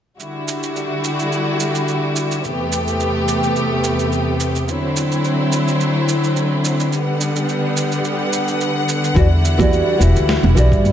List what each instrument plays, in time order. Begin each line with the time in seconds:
0.19 string section D3 G3 E4 F#4, cabasa
0.48 cabasa
0.63 cabasa
0.76 cabasa
1.04 cabasa
1.19 cabasa
1.32 cabasa
1.60 cabasa
1.75 cabasa
1.88 cabasa
2.16 cabasa
2.31 cabasa
2.44 string section E2 C3 A3 B3 G4, cabasa
2.72 cabasa
2.88 cabasa
3.00 cabasa
3.28 cabasa
3.43 cabasa
3.56 cabasa
3.84 cabasa
3.99 cabasa
4.12 cabasa
4.40 cabasa
4.55 cabasa
4.68 string section D3 F#3 C4 E4, cabasa
4.96 cabasa
5.12 cabasa
5.24 cabasa
5.52 cabasa
5.68 cabasa
5.81 cabasa
6.09 cabasa
6.24 cabasa
6.37 cabasa
6.65 cabasa
6.80 cabasa
6.92 string section G3 B3 F#5, cabasa
7.21 cabasa
7.36 cabasa
7.49 cabasa
7.77 cabasa
7.92 cabasa
8.05 cabasa
8.33 cabasa
8.48 cabasa
8.61 cabasa
8.89 cabasa
9.04 cabasa
9.14 upright bass E2, nylon-string guitar E3 E4 F#4 G4 D5, string section G3 E4, kick, cabasa
9.45 cabasa
9.58 nylon-string guitar E3 E4 F#4 G4 D5, kick, high conga, low conga, cabasa
9.73 cabasa
9.98 upright bass E1, nylon-string guitar E3 E4 F#4 G4 E5, high conga, cabasa
10.16 upright bass D2, cabasa
10.29 snare, cabasa
10.43 upright bass E1, high conga, low conga
10.54 upright bass B1, nylon-string guitar E3 E4 F#4 G4 D5, cabasa
10.72 upright bass G2, kick, cabasa
10.85 high conga, cabasa